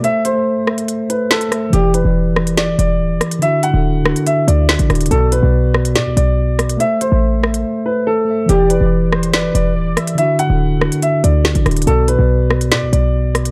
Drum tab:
HH |x---x---------x-x---x-----x-x---|x---x---------x-x---x-------x-x-|x---x---------x-x---x-----x-xxxx|x---x---------x-x---x-------x-x-|
SD |------------r-----------o---r---|------------r---o-----------r---|------------r-----------o---r---|------------r---o-----------r---|

HH |x---x---------x-----------------|x---x---------x-x---x-------x-x-|x---x---------x-x---x-----x-xxxx|x---x---------x-x---x-------x-x-|
SD |------------r-------------------|------------r---o-----------r---|------------r-----------o---r---|------------r---o-----------r---|